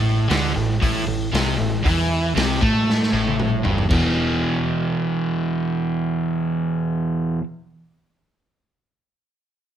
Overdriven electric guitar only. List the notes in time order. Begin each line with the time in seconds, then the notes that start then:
Already playing: A2
0.29 D3
0.55 A2
0.81 A2
1.07 A2
1.32 C3
1.58 A2
1.84 E3
2.35 C3
2.61 A3
3.12 A2
3.63 G2
3.89 E2 B2
3.93 E3